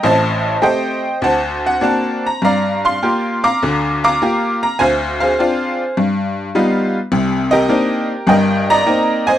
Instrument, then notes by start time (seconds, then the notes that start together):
honky-tonk piano
0.03 A1 A2 C5 D#5 A5
0.62 A3 C4 G4 C5 D#5 G5
1.22 D2 C5 F#5 A5
1.66 F#5
1.81 A#3 C4 D4 F#4 A5
2.26 A#5
2.42 G2 D5 F5 A#5
2.85 F5 C6
3.03 A#3 F4 G4
3.44 F5 A#5 D6
3.63 D2 D3
4.04 F5 A#5 D6
4.22 A#3 F4 G4
4.63 A#5
4.79 D2 C5 F5 G#5
5.20 G#4 C5 F5
5.39 C4 D4 F4
5.97 G2
6.55 G3 B3 D#4 F4
7.12 C2 C3
7.51 G4 A#4 D#5
7.69 A#3 C4 D4 D#4
8.27 G1 G2 D#5 G5
8.31 A#4
8.70 D5 D#5 A#5
8.86 A#3 C4 D#4
9.27 C5 D#5 G#5